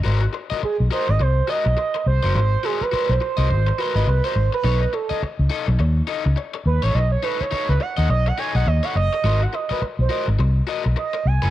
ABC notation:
X:1
M:4/4
L:1/16
Q:"Swing 16ths" 1/4=104
K:Abmix
V:1 name="Analog synth lead"
z4 A2 c e c2 e4 c2 | c2 A _c2 =c2 c3 _c2 c =c2 _c- | _c2 =A2 z8 z2 =B ^c | ^d ^c =B c c B ^f f d f a f d f d2- |
^d g e _c2 =c2 z4 z e2 a a |]
V:2 name="Overdriven electric guitar"
[GBc] z2 [GBe] z2 [GBe] z3 [GBe] z4 [GBc] | z2 [GBc] z [GBc] z2 [GBe] z2 [GBc] [GBe] z [GBc] z2 | [^D=A^c] z2 [DA^d] z2 [DAd] z3 [DAd] z4 [DAc] | z2 [^D=A^c] z [DAc] z2 [DA^d] z2 [DAc] [DAd] z [DAc] z2 |
[GBc] z2 [GBe] z2 [GBe] z3 [GBe] z4 [GBc] |]
V:3 name="Fingered electric bass" clef=bass
A,,,2 z3 _C,, z A,,, =C,,2 z _C,, z2 =C,, G,,, | A,,,2 z3 _C,, z =C,, A,,,2 z A,,, C,, z A,,, z | =B,,,2 z3 ^C,, z B,,, ^D,,2 z C,, z2 D,, =A,,, | =B,,,2 z3 ^C,, z ^D,, B,,,2 z B,,, D,, z ^F,,, z |
A,,,2 z3 _C,, z A,,, =C,,2 z _C,, z2 =C,, G,,, |]